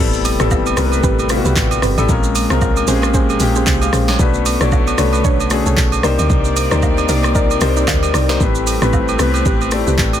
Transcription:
0.00 A1 C3 G3 A3 B3 C4 E4 A4, impact
0.13 shaker
0.25 open hi-hat, high agogo, shaker
0.40 A1 G3 B3 C4 E4 G4 A4 B4, cross-stick, shaker
0.51 kick, low woodblock, shaker
0.66 high agogo, shaker
0.77 C2 G3 B3 C4 E4 G4 A#4 B4, cross-stick, open hi-hat, shaker
0.85 B4
0.92 high agogo, shaker
1.03 A1 C4 G4 B4, kick, shaker
1.19 high agogo, shaker
1.29 G3 B3 C4 E4 F4, cross-stick, open hi-hat, shaker
1.38 F#4
1.45 C2 C4 G4 B4, shaker
1.56 A1, kick, clap, shaker
1.71 high agogo, shaker
1.82 G1 C4 G4 B4, cross-stick, open hi-hat, shaker
1.98 A1 G3 B3 C4 E4 A4, high agogo, shaker
2.09 A#1 A#2 G#3 A#3 C4 C#4 F4 A#4, kick, shaker
2.23 shaker
2.35 open hi-hat, high agogo, shaker
2.50 C2 G#3 C4 C#4 F4 G#4 A#4 C5, cross-stick, shaker
2.61 kick, low woodblock, shaker
2.77 high agogo, shaker
2.87 A#1 G#3 C4 C#4 F4 G4 G#4 C5, open hi-hat, shaker
2.95 G#4
3.02 cross-stick, high agogo, shaker
3.14 C#4 G#4 C5, kick, shaker
3.30 high agogo, shaker
3.40 A#1 G#3 C4 C#4 F4 G4, open hi-hat, shaker
3.55 C#4 G#4 C5, shaker
3.67 C2 C5, kick, clap, shaker
3.81 F5, high agogo, shaker
3.93 A#1 C#4 G#4 C5, cross-stick, open hi-hat, shaker
4.08 C#5, snare, high agogo, shaker
4.19 B1 D3 A3 B3 C#4 D4 F#4 B4, kick, shaker
4.34 shaker
4.46 open hi-hat, high agogo, shaker
4.61 B1 A3 D4 F#4 A4 C#5 D5, cross-stick, shaker
4.72 kick, low woodblock, shaker
4.87 high agogo, shaker
4.98 C2 A3 C#4 D4 F#4 A4 B4 C#5, cross-stick, open hi-hat, shaker
5.13 high agogo, shaker
5.24 B1 D4 A4 C#5, kick, shaker
5.40 high agogo, shaker
5.50 A3 C#4 D4 F#4 G#4, cross-stick, open hi-hat, shaker
5.66 C2 D4 A4 C#5, shaker
5.77 B1, kick, clap, shaker
5.92 high agogo, shaker
6.03 C2 C3 G3 A#3 C4 D4 D#4 G4 A#4 C5 D5, cross-stick, open hi-hat, shaker
6.19 D2, high agogo, shaker
6.30 C2, kick, shaker
6.45 shaker
6.56 open hi-hat, high agogo, shaker
6.71 D2 A#3 D4 D#4 G4 A#4 C5 D5, cross-stick, shaker
6.82 kick, low woodblock, shaker
6.98 high agogo, shaker
7.08 C2 A#3 D4 D#4 G4 A#4 D5, open hi-hat, shaker
7.23 cross-stick, high agogo, shaker
7.35 D#4 A#4 D5, kick, shaker
7.51 high agogo, shaker
7.61 C2 A#3 D4 D#4 G4 C5, cross-stick, open hi-hat, shaker
7.76 D#4 A#4 D5, shaker
7.87 D2, kick, clap, low woodblock, shaker
8.03 high agogo, shaker
8.14 C2 D#4 A#4 D5, cross-stick, open hi-hat, shaker
8.29 A#3 D4 D#4 G4 C5, snare, high agogo, shaker
8.40 A1 A3 C4 E4 G4 B4, kick, shaker
8.55 shaker
8.67 open hi-hat, high agogo, shaker
8.82 A1 A3 C4 E4 G4 B4, cross-stick, shaker
8.93 kick, low woodblock, shaker
9.08 high agogo, shaker
9.19 C2 A3 B3 C4 E4 G4 B4, cross-stick, open hi-hat, shaker
9.26 C4
9.34 high agogo, shaker
9.45 A1 C4 G4 B4, kick, shaker
9.61 high agogo, shaker
9.71 A3 C4 E4 G4 D5, cross-stick, open hi-hat, shaker
9.87 C2 C4 G4 B4, shaker
9.98 A1, kick, clap, shaker
10.13 high agogo, shaker

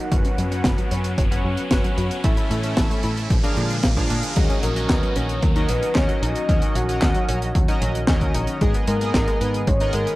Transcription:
Already playing: riser
0.11 F#1 F#3 B3 C#4 F#4 B4 F#5, kick, closed hi-hat
0.25 C#4, closed hi-hat
0.38 F#2 F#3, closed hi-hat
0.51 C#4 F#4 B4 F#5, closed hi-hat
0.64 F#1 F#4, kick, snare, closed hi-hat
0.78 F#3, closed hi-hat
0.91 F#2 C#4 F#4 B4 F#5, closed hi-hat
1.04 closed hi-hat
1.18 F#1 F#3, kick, closed hi-hat
1.31 C#4 F#4 B4 F#5, closed hi-hat
1.44 F#2 F#3
1.57 closed hi-hat
1.71 F#1 C#4 F#4 B4 F#5, kick, snare, closed hi-hat
1.84 F#3, closed hi-hat
1.97 F#2 F#4, closed hi-hat
2.11 closed hi-hat
2.24 A1 E3 A3 C#4 E4 A4 E5, kick, closed hi-hat
2.37 E4, closed hi-hat
2.51 A2 A3, closed hi-hat
2.63 C#4 E4 A4 E5, closed hi-hat
2.77 A1 A4, kick, snare, closed hi-hat
2.90 A3, closed hi-hat
3.03 A2 C#4 E4 A4 E5, closed hi-hat
3.17 closed hi-hat
3.30 A#1 D3 F3 G#3 A#3 F4, kick, closed hi-hat
3.43 D4 G#4 A#4 F5, closed hi-hat
3.57 A#2 F3, closed hi-hat
3.70 closed hi-hat
3.83 A#1 A#3, kick, snare, closed hi-hat
3.97 F3 D4 G#4 A#4 F5, kick, closed hi-hat
4.10 A#2 D4, closed hi-hat
4.23 closed hi-hat
4.36 D#2 D#3 F#3 C#4 F#4 G#4 A#4 D#5, kick, closed hi-hat, crash, downlifter
4.50 C#4, closed hi-hat
4.63 A#1 F#3 A#4, closed hi-hat
4.76 C#4 F#4 A#4 D#5, closed hi-hat
4.90 D#2 D#4 B4, kick, snare, clap, closed hi-hat
5.03 F#3, closed hi-hat
5.16 A#1 C#4 F#4 A#4 C#5 D#5, closed hi-hat
5.29 closed hi-hat
5.42 D#2 F#3 A#4, kick, closed hi-hat
5.56 C#4 D#4 F#4 A#4 D#5, closed hi-hat
5.69 A#1 F#3 B4, closed hi-hat
5.83 closed hi-hat
5.95 D#2 C#4 F#4 A#4 C#5 D#5, kick, snare, clap, closed hi-hat
6.09 F#3, closed hi-hat
6.22 A#1 D#4 D#5, closed hi-hat
6.36 closed hi-hat
6.49 D#2 F#3 C#4 F#4 A#4 D#5, kick, closed hi-hat
6.62 C#4, closed hi-hat
6.75 A#1 F#3 F#5, closed hi-hat
6.89 C#4 F#4 A#4 D#5, closed hi-hat
7.02 D#2 D#4, kick, snare, clap, closed hi-hat
7.14 F#3, closed hi-hat
7.28 A#1 C#4 F#4 A#4 D#5, closed hi-hat
7.42 closed hi-hat
7.55 D#2 F#3, kick, closed hi-hat
7.68 C#4 D#4 F#4 A#4 D#5, closed hi-hat
7.82 A#1 F#3, closed hi-hat
7.95 closed hi-hat
8.07 D#2 C#4 F#4 A#4 D#5, kick, snare, clap, closed hi-hat
8.21 F#3, kick, closed hi-hat
8.34 A#1 D#4, closed hi-hat
8.47 closed hi-hat
8.61 G#1 G#3 B3 G#4 A#4 D#5, kick, closed hi-hat
8.74 B3, closed hi-hat
8.88 G#2 G#3 A#4, closed hi-hat
9.01 B3 G#4 A#4 D#5, closed hi-hat
9.14 G#1 D#4, kick, snare, clap, closed hi-hat
9.28 G#3, closed hi-hat
9.41 G#2 B3 G#4 A#4 B4 D#5, closed hi-hat
9.54 closed hi-hat
9.67 G#1 G#3 C#5, kick, closed hi-hat
9.80 B3 D#4 G#4 A#4 D#5, closed hi-hat
9.93 G#2 G#3 A#4, closed hi-hat
10.07 closed hi-hat

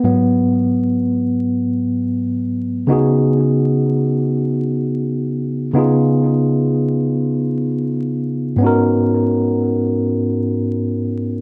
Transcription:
0.04 G#2 F#3 B3
2.87 C#3 B3 D#4 F#4
2.92 G#4
5.74 C#3 B3 D#4 F4
5.78 G#4
8.56 G#2 B3
8.61 C#4 D#4 F#4
8.66 A#4

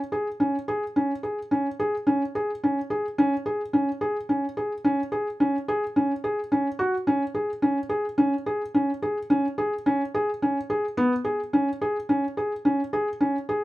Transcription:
0.12 G#4
0.40 C#4
0.68 G#4
0.96 C#4
1.23 G#4
1.51 C#4
1.80 G#4
2.07 C#4
2.35 G#4
2.64 C#4
2.90 G#4
3.18 C#4
3.46 G#4
3.73 C#4
4.01 G#4
4.29 C#4
4.57 G#4
4.84 C#4
5.12 G#4
5.40 C#4
5.68 G#4
5.96 C#4
6.24 G#4
6.52 C#4
6.79 F#4
7.07 C#4
7.35 G#4
7.62 C#4
7.89 G#4
8.18 C#4
8.46 G#4
8.74 C#4
9.02 G#4
9.30 C#4
9.58 G#4
9.86 C#4
10.14 G#4
10.42 C#4
10.70 G#4
10.97 B3
11.25 G#4
11.53 C#4
11.81 G#4
12.09 C#4
12.37 G#4
12.65 C#4
12.93 G#4
13.21 C#4
13.49 G#4

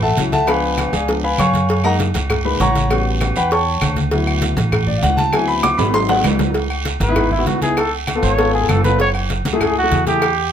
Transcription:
Already playing: A1
0.02 A4 E5 F#5 A5, high conga, low conga
0.17 C#2 F#3 C#4 E4, cowbell, high conga, low agogo, short guiro
0.32 A4 E5 F#5 A5, cowbell, high conga, short guiro
0.47 F3 B3 D4 B4 F5 G#5 B5, cowbell, high conga, low agogo, long guiro, claves
0.63 high conga
0.78 cowbell, high conga, low agogo, short guiro, claves
0.88 G5
0.93 C#2 G#4 D5 F5 G#5, low agogo, short guiro
1.08 F3 B3 D4, cowbell, high conga, long guiro
1.23 B4 F5 G#5 B5, high conga
1.38 F#2 C#5 F5 G#5 C#6, cowbell, high conga, low agogo, short guiro, claves
1.53 cowbell, high conga, short guiro
1.69 cowbell, low agogo, long guiro
1.84 G#3 A#3 D#4 A#4 D#5 F#5 A#5, low agogo, claves
2.00 cowbell, high conga, short guiro
2.14 C#2, cowbell, high conga, low agogo, short guiro
2.30 cowbell, high conga, low conga, low agogo, long guiro, claves
2.45 G#3 A#3 D#4 B4 B5, high conga
2.60 A1 C#5 F#5 A#5 C#6, cowbell, high conga, low timbale, low agogo, short guiro
2.75 cowbell, high conga, short guiro
2.90 G3 B3 C#4 F#4, cowbell, high conga, low agogo, long guiro, claves
3.06 high conga
3.21 cowbell, high conga, low agogo, short guiro, claves
3.36 E2 B4 F#5 G5 B5, high conga, low agogo, short guiro
3.51 C#5 G5 A5 C#6, cowbell, high conga, long guiro
3.67 high conga
3.81 D2, cowbell, high conga, low agogo, short guiro, claves
3.96 cowbell, high conga, short guiro
4.11 F#3 B3 E4, cowbell, high conga, low agogo, long guiro
4.27 low agogo, claves
4.42 cowbell, high conga, short guiro
4.57 A1, cowbell, high conga, low agogo, short guiro
4.72 cowbell, high conga, low conga, low agogo, long guiro, claves
4.87 D5, high conga, low conga
4.98 F5, high conga
5.03 D2 F#5, cowbell, low timbale, low agogo, short guiro
5.17 A5, cowbell, high conga, short guiro
5.32 F#3 B3 C4 E4 G#5, cowbell, high conga, low agogo, long guiro, claves
5.48 B5, high conga
5.63 D6, cowbell, high bongo, high conga, low agogo, short guiro, claves
5.78 G#1 B5, high conga, high timbale, low agogo, short guiro
5.93 F#3 C4 D#4 C6, cowbell, high bongo, high conga, long guiro
6.09 F#5, low bongo, high conga, high timbale
6.24 C#2, cowbell, high conga, low timbale, low agogo, short guiro, claves
6.39 cowbell, low bongo, high conga, low timbale, short guiro
6.54 cowbell, low agogo, long guiro
6.70 high conga, low agogo, claves
6.85 cowbell, high conga, short guiro
7.00 G#1 B4, cowbell, high conga, low agogo, short guiro
7.08 B3 D#4 E4
7.16 cowbell, high conga, low conga, low agogo, long guiro, claves
7.31 E4, high conga, low conga
7.38 B3 D#4 F#4
7.46 C#2 F#4, cowbell, high conga, low timbale, low agogo, short guiro
7.61 B3 D#4 E4 G#4, cowbell, high conga, short guiro
7.77 A4, cowbell, low agogo, long guiro, claves
7.93 high conga
8.07 cowbell, high conga, low agogo, short guiro, claves
8.15 B3 F4 A4
8.23 G#1 C#5, low agogo, short guiro
8.38 B3 F4 A4, cowbell, high conga, long guiro
8.53 G#4, high conga
8.61 B3 F4 A4
8.68 F#1 A4, cowbell, high conga, low timbale, low agogo, short guiro, claves
8.84 B3 F4 A4 B4, cowbell, high conga, short guiro
8.99 C#5, cowbell, low agogo, long guiro
9.14 high conga, low agogo, claves
9.30 cowbell, high conga, short guiro
9.45 C#2, cowbell, high conga, low agogo, short guiro
9.53 A3 E4 G#4
9.61 G#4, cowbell, high conga, low conga, low agogo, long guiro, claves
9.76 F#4, high conga
9.83 A3 E4 G#4
9.91 E2, cowbell, high conga, low agogo, short guiro
10.06 A3 E4 G4 G#4, cowbell, high conga, short guiro
10.22 cowbell, high conga, low agogo, long guiro, claves
10.37 high conga

